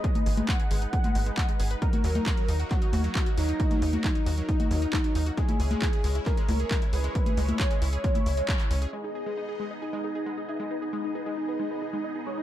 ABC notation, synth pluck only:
X:1
M:4/4
L:1/16
Q:1/4=135
K:G#m
V:1 name="Synth pluck"
G, D G G, D G G, D G G, G, G, d G, G B | D F F, D F F, D F F, D F F, D F F, D | F F, D F F, D F F, D F F, D F F, D F | G, E G G, E G G, E G G, E G G, E G G, |
E G G, E G G, E G G, E E G, G E C G | G, D G G, D G G, D G G, D G G, D G G, | D G G, D G G, D G G, D G G, D G G, D |]